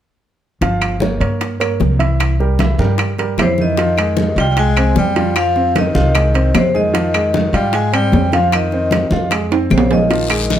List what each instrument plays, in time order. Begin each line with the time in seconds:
0.61 upright bass G1, grand piano F3 F4 F5, high bongo, high conga, high timbale
0.81 high bongo, high conga, high timbale, claves
1.00 grand piano A#3 A#4 C#5, high bongo, high conga
1.20 upright bass G2, grand piano A#3 A#4 C#5, high timbale
1.40 high bongo, high conga, high timbale
1.60 grand piano A#3 A#4 C#5, high bongo, high conga, high timbale, claves
1.80 upright bass C2, high bongo, low bongo, high conga
1.99 grand piano E3 E4 E5, high bongo, high timbale
2.19 high bongo, high conga, high timbale, claves
2.39 grand piano G3 G4 A#4, high bongo, high conga
2.59 grand piano E3 E4 E5, high bongo, high conga, high timbale
2.78 upright bass G2, grand piano G3 G4 A#4, high conga
2.98 high bongo, high conga, high timbale, claves
3.18 grand piano G3 G4 A#4, high bongo, high conga, high timbale
3.38 upright bass F2, tenor saxophone C3, grand piano E3 E4 E5, high bongo, low bongo, high conga, high timbale, low timbale, claves
3.42 vibraphone C5
3.58 tenor saxophone D#3, vibraphone D#5, high bongo, high conga
3.77 grand piano F3 F4, high bongo, high timbale
3.97 grand piano G#3 G#4, high bongo, high conga, high timbale, claves
4.17 high bongo, high conga
4.36 upright bass C2, tenor saxophone G3, grand piano F4 F5, vibraphone G5, high timbale
4.50 tenor saxophone G3, vibraphone G5
4.57 tenor saxophone G#3, vibraphone G#5, high bongo, high conga, high timbale
4.77 grand piano C4 C5, high bongo, high conga, high timbale, claves
4.96 upright bass F2, tenor saxophone G3, vibraphone G5, high bongo, low bongo, high conga
5.16 grand piano F3 F4, high bongo, high conga, high timbale
5.36 tenor saxophone F3, vibraphone F5, high bongo, high conga, high timbale, claves
5.56 grand piano C4 C5, high bongo, high conga
5.76 tenor saxophone D#3, vibraphone D#5, high bongo, high conga, high timbale
5.95 upright bass C2, grand piano F4 F5, high conga
6.15 grand piano G#3 G#4, high bongo, high conga, high timbale, claves
6.34 grand piano C4 C5, high bongo, high conga, high timbale
6.54 upright bass F2, tenor saxophone C3, vibraphone C5, high bongo, low bongo, high conga, high timbale, low timbale, claves
6.74 tenor saxophone D#3, grand piano G#3 G#4, vibraphone D#5, high bongo, high conga
6.94 grand piano F3 F4, high bongo, high conga, high timbale
7.14 grand piano G#3 G#4, high bongo, high conga, high timbale, claves
7.34 high bongo, high conga
7.53 upright bass G#2, tenor saxophone G3, grand piano F4 F5, vibraphone G5, high timbale
7.73 tenor saxophone G#3, vibraphone G#5, high bongo, high conga, high timbale
7.92 tenor saxophone G3, grand piano C4 C5, vibraphone G5, high bongo, high conga, high timbale, claves
8.12 upright bass F2, high bongo, low bongo, high conga, low timbale
8.32 grand piano F3 F4, tenor saxophone F3, vibraphone F5, high bongo, high conga, high timbale
8.52 tenor saxophone D#3, vibraphone D#5, high bongo, high conga, high timbale, claves
8.71 grand piano C4 C5, high bongo, high conga
8.91 high bongo, high conga, high timbale
9.11 upright bass F2, grand piano F4 F5, high conga
9.30 grand piano G#3 G#4, high bongo, high conga, high timbale, claves
9.51 grand piano C4 C5, high bongo, high conga, high timbale
9.70 upright bass A#1, tenor saxophone C3, vibraphone C5, high bongo, low bongo, high conga, claves
9.78 low timbale
9.90 tenor saxophone D#3, grand piano G#3 G#4, vibraphone D#5, high bongo, high conga, low timbale
10.10 grand piano F3 F4, high bongo, high conga, high timbale, long guiro
10.30 grand piano G#3 G#4, high bongo, high conga, high timbale, claves
10.50 high bongo, high conga, short guiro